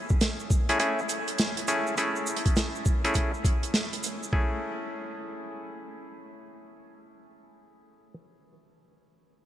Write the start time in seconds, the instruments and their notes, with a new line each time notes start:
0.09 kick, shaker
0.21 snare, closed hi-hat, shaker
0.40 shaker
0.50 kick, shaker
0.69 clav A3 C#4 E4 G#4, closed hi-hat, shaker
0.80 clav A3 C#4 E4 G#4, closed hi-hat, shaker
0.99 shaker
1.09 closed hi-hat, shaker
1.28 closed hi-hat, shaker
1.38 snare, closed hi-hat, shaker
1.57 closed hi-hat, shaker
1.68 clav A3 C#4 E4 G#4, closed hi-hat, shaker
1.87 shaker
1.97 clav A3 C#4 E4 G#4, closed hi-hat, shaker
2.16 shaker
2.27 shaker
2.36 closed hi-hat
2.46 kick, closed hi-hat, shaker
2.56 snare, closed hi-hat, shaker
2.75 shaker
2.86 kick, shaker
3.04 clav A3 C#4 E4 G#4, closed hi-hat, shaker
3.14 kick, closed hi-hat, shaker
3.34 shaker
3.45 kick, closed hi-hat, shaker
3.63 closed hi-hat, shaker
3.74 snare, closed hi-hat, shaker
3.93 closed hi-hat, shaker
4.03 closed hi-hat, shaker
4.23 shaker
4.33 clav A3 C#4 E4 G#4, kick